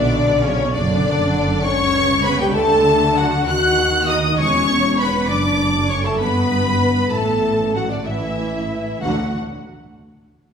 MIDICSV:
0, 0, Header, 1, 8, 480
1, 0, Start_track
1, 0, Key_signature, 2, "major"
1, 0, Tempo, 588813
1, 837, Tempo, 614754
1, 1322, Time_signature, 6, 3, 24, 8
1, 2757, Tempo, 601805
1, 5157, Tempo, 630915
1, 8229, End_track
2, 0, Start_track
2, 0, Title_t, "Violin section"
2, 0, Program_c, 0, 48
2, 0, Note_on_c, 0, 74, 81
2, 350, Note_on_c, 0, 73, 83
2, 351, Note_off_c, 0, 74, 0
2, 584, Note_on_c, 0, 74, 81
2, 591, Note_off_c, 0, 73, 0
2, 1304, Note_off_c, 0, 74, 0
2, 1308, Note_on_c, 0, 85, 98
2, 1776, Note_off_c, 0, 85, 0
2, 1781, Note_on_c, 0, 83, 89
2, 1902, Note_on_c, 0, 79, 74
2, 1904, Note_off_c, 0, 83, 0
2, 1951, Note_off_c, 0, 79, 0
2, 2011, Note_on_c, 0, 81, 93
2, 2496, Note_off_c, 0, 81, 0
2, 2507, Note_on_c, 0, 78, 76
2, 2750, Note_on_c, 0, 90, 83
2, 2753, Note_off_c, 0, 78, 0
2, 3224, Note_off_c, 0, 90, 0
2, 3229, Note_on_c, 0, 87, 80
2, 3471, Note_off_c, 0, 87, 0
2, 3473, Note_on_c, 0, 85, 91
2, 3942, Note_off_c, 0, 85, 0
2, 3955, Note_on_c, 0, 83, 73
2, 4189, Note_off_c, 0, 83, 0
2, 4197, Note_on_c, 0, 86, 77
2, 4666, Note_off_c, 0, 86, 0
2, 4683, Note_on_c, 0, 85, 66
2, 4798, Note_off_c, 0, 85, 0
2, 4805, Note_on_c, 0, 81, 69
2, 4913, Note_on_c, 0, 83, 77
2, 4919, Note_off_c, 0, 81, 0
2, 5627, Note_off_c, 0, 83, 0
2, 5629, Note_on_c, 0, 81, 64
2, 6105, Note_off_c, 0, 81, 0
2, 6109, Note_on_c, 0, 78, 52
2, 6223, Note_off_c, 0, 78, 0
2, 6231, Note_on_c, 0, 74, 55
2, 6344, Note_on_c, 0, 76, 53
2, 6346, Note_off_c, 0, 74, 0
2, 7073, Note_on_c, 0, 78, 50
2, 7078, Note_off_c, 0, 76, 0
2, 7343, Note_off_c, 0, 78, 0
2, 8229, End_track
3, 0, Start_track
3, 0, Title_t, "Violin section"
3, 0, Program_c, 1, 48
3, 0, Note_on_c, 1, 74, 69
3, 352, Note_on_c, 1, 73, 64
3, 360, Note_off_c, 1, 74, 0
3, 592, Note_off_c, 1, 73, 0
3, 603, Note_on_c, 1, 74, 74
3, 1313, Note_off_c, 1, 74, 0
3, 1328, Note_on_c, 1, 85, 76
3, 1796, Note_off_c, 1, 85, 0
3, 1798, Note_on_c, 1, 83, 70
3, 1910, Note_off_c, 1, 83, 0
3, 1912, Note_on_c, 1, 79, 67
3, 2025, Note_on_c, 1, 81, 82
3, 2026, Note_off_c, 1, 79, 0
3, 2504, Note_on_c, 1, 78, 76
3, 2513, Note_off_c, 1, 81, 0
3, 2751, Note_on_c, 1, 90, 75
3, 2752, Note_off_c, 1, 78, 0
3, 3234, Note_off_c, 1, 90, 0
3, 3236, Note_on_c, 1, 87, 73
3, 3300, Note_off_c, 1, 87, 0
3, 3476, Note_on_c, 1, 85, 80
3, 3943, Note_off_c, 1, 85, 0
3, 3954, Note_on_c, 1, 83, 70
3, 4188, Note_off_c, 1, 83, 0
3, 4198, Note_on_c, 1, 86, 65
3, 4675, Note_off_c, 1, 86, 0
3, 4681, Note_on_c, 1, 85, 59
3, 4728, Note_off_c, 1, 85, 0
3, 4798, Note_on_c, 1, 81, 53
3, 4845, Note_off_c, 1, 81, 0
3, 4917, Note_on_c, 1, 83, 66
3, 5615, Note_off_c, 1, 83, 0
3, 5631, Note_on_c, 1, 81, 54
3, 6106, Note_off_c, 1, 81, 0
3, 6111, Note_on_c, 1, 78, 46
3, 6157, Note_off_c, 1, 78, 0
3, 6233, Note_on_c, 1, 74, 42
3, 6279, Note_off_c, 1, 74, 0
3, 6354, Note_on_c, 1, 76, 52
3, 7068, Note_off_c, 1, 76, 0
3, 7084, Note_on_c, 1, 78, 46
3, 7348, Note_off_c, 1, 78, 0
3, 8229, End_track
4, 0, Start_track
4, 0, Title_t, "Viola section"
4, 0, Program_c, 2, 48
4, 0, Note_on_c, 2, 62, 68
4, 344, Note_off_c, 2, 62, 0
4, 356, Note_on_c, 2, 61, 58
4, 594, Note_off_c, 2, 61, 0
4, 595, Note_on_c, 2, 62, 68
4, 1323, Note_on_c, 2, 73, 85
4, 1324, Note_off_c, 2, 62, 0
4, 1785, Note_off_c, 2, 73, 0
4, 1792, Note_on_c, 2, 71, 72
4, 1909, Note_off_c, 2, 71, 0
4, 1911, Note_on_c, 2, 67, 68
4, 2028, Note_off_c, 2, 67, 0
4, 2031, Note_on_c, 2, 69, 72
4, 2506, Note_off_c, 2, 69, 0
4, 2515, Note_on_c, 2, 66, 62
4, 2756, Note_on_c, 2, 78, 75
4, 2757, Note_off_c, 2, 66, 0
4, 3227, Note_off_c, 2, 78, 0
4, 3234, Note_on_c, 2, 75, 64
4, 3474, Note_off_c, 2, 75, 0
4, 3477, Note_on_c, 2, 73, 77
4, 3954, Note_off_c, 2, 73, 0
4, 3954, Note_on_c, 2, 71, 65
4, 4193, Note_off_c, 2, 71, 0
4, 4193, Note_on_c, 2, 74, 63
4, 4673, Note_off_c, 2, 74, 0
4, 4675, Note_on_c, 2, 73, 55
4, 4791, Note_on_c, 2, 69, 54
4, 4794, Note_off_c, 2, 73, 0
4, 4912, Note_off_c, 2, 69, 0
4, 4914, Note_on_c, 2, 71, 63
4, 5628, Note_off_c, 2, 71, 0
4, 5629, Note_on_c, 2, 69, 57
4, 6095, Note_off_c, 2, 69, 0
4, 6107, Note_on_c, 2, 66, 48
4, 6224, Note_on_c, 2, 62, 39
4, 6225, Note_off_c, 2, 66, 0
4, 6272, Note_off_c, 2, 62, 0
4, 6346, Note_on_c, 2, 64, 46
4, 7065, Note_off_c, 2, 64, 0
4, 7081, Note_on_c, 2, 66, 49
4, 7347, Note_off_c, 2, 66, 0
4, 8229, End_track
5, 0, Start_track
5, 0, Title_t, "French horn section"
5, 0, Program_c, 3, 60
5, 0, Note_on_c, 3, 50, 71
5, 346, Note_off_c, 3, 50, 0
5, 362, Note_on_c, 3, 49, 69
5, 594, Note_on_c, 3, 50, 75
5, 597, Note_off_c, 3, 49, 0
5, 1309, Note_off_c, 3, 50, 0
5, 1320, Note_on_c, 3, 61, 80
5, 1792, Note_off_c, 3, 61, 0
5, 1798, Note_on_c, 3, 59, 69
5, 1910, Note_off_c, 3, 59, 0
5, 1918, Note_on_c, 3, 55, 77
5, 2029, Note_on_c, 3, 57, 79
5, 2032, Note_off_c, 3, 55, 0
5, 2510, Note_on_c, 3, 54, 68
5, 2515, Note_off_c, 3, 57, 0
5, 2620, Note_off_c, 3, 54, 0
5, 2763, Note_on_c, 3, 66, 70
5, 3230, Note_off_c, 3, 66, 0
5, 3237, Note_on_c, 3, 63, 68
5, 3344, Note_off_c, 3, 63, 0
5, 3473, Note_on_c, 3, 61, 75
5, 3942, Note_off_c, 3, 61, 0
5, 3958, Note_on_c, 3, 59, 55
5, 4191, Note_off_c, 3, 59, 0
5, 4196, Note_on_c, 3, 62, 72
5, 4665, Note_off_c, 3, 62, 0
5, 4678, Note_on_c, 3, 61, 55
5, 4793, Note_off_c, 3, 61, 0
5, 4796, Note_on_c, 3, 57, 55
5, 4915, Note_off_c, 3, 57, 0
5, 4924, Note_on_c, 3, 59, 75
5, 5618, Note_off_c, 3, 59, 0
5, 5631, Note_on_c, 3, 57, 57
5, 6096, Note_off_c, 3, 57, 0
5, 6108, Note_on_c, 3, 54, 48
5, 6225, Note_off_c, 3, 54, 0
5, 6229, Note_on_c, 3, 50, 47
5, 6345, Note_off_c, 3, 50, 0
5, 6348, Note_on_c, 3, 52, 55
5, 7077, Note_on_c, 3, 54, 49
5, 7080, Note_off_c, 3, 52, 0
5, 7284, Note_off_c, 3, 54, 0
5, 8229, End_track
6, 0, Start_track
6, 0, Title_t, "Timpani"
6, 0, Program_c, 4, 47
6, 7083, Note_on_c, 4, 50, 33
6, 7304, Note_off_c, 4, 50, 0
6, 8229, End_track
7, 0, Start_track
7, 0, Title_t, "Cello section"
7, 0, Program_c, 5, 48
7, 0, Note_on_c, 5, 47, 68
7, 475, Note_off_c, 5, 47, 0
7, 595, Note_on_c, 5, 42, 67
7, 1203, Note_off_c, 5, 42, 0
7, 1323, Note_on_c, 5, 49, 60
7, 1997, Note_off_c, 5, 49, 0
7, 2028, Note_on_c, 5, 50, 70
7, 2757, Note_off_c, 5, 50, 0
7, 2760, Note_on_c, 5, 51, 65
7, 3462, Note_off_c, 5, 51, 0
7, 3482, Note_on_c, 5, 40, 67
7, 4196, Note_off_c, 5, 40, 0
7, 4196, Note_on_c, 5, 42, 57
7, 4915, Note_off_c, 5, 42, 0
7, 4921, Note_on_c, 5, 43, 56
7, 5631, Note_off_c, 5, 43, 0
7, 5634, Note_on_c, 5, 45, 47
7, 6331, Note_off_c, 5, 45, 0
7, 6347, Note_on_c, 5, 45, 41
7, 6907, Note_off_c, 5, 45, 0
7, 7083, Note_on_c, 5, 50, 49
7, 7348, Note_off_c, 5, 50, 0
7, 8229, End_track
8, 0, Start_track
8, 0, Title_t, "Double bass section"
8, 0, Program_c, 6, 48
8, 0, Note_on_c, 6, 35, 81
8, 471, Note_off_c, 6, 35, 0
8, 591, Note_on_c, 6, 30, 77
8, 1201, Note_off_c, 6, 30, 0
8, 1322, Note_on_c, 6, 37, 73
8, 1996, Note_off_c, 6, 37, 0
8, 2026, Note_on_c, 6, 38, 64
8, 2756, Note_off_c, 6, 38, 0
8, 2756, Note_on_c, 6, 39, 72
8, 3460, Note_off_c, 6, 39, 0
8, 3475, Note_on_c, 6, 28, 67
8, 4193, Note_off_c, 6, 28, 0
8, 4194, Note_on_c, 6, 30, 63
8, 4914, Note_off_c, 6, 30, 0
8, 4915, Note_on_c, 6, 31, 56
8, 5626, Note_on_c, 6, 33, 57
8, 5628, Note_off_c, 6, 31, 0
8, 6327, Note_off_c, 6, 33, 0
8, 6341, Note_on_c, 6, 33, 43
8, 6905, Note_off_c, 6, 33, 0
8, 7078, Note_on_c, 6, 38, 63
8, 7345, Note_off_c, 6, 38, 0
8, 8229, End_track
0, 0, End_of_file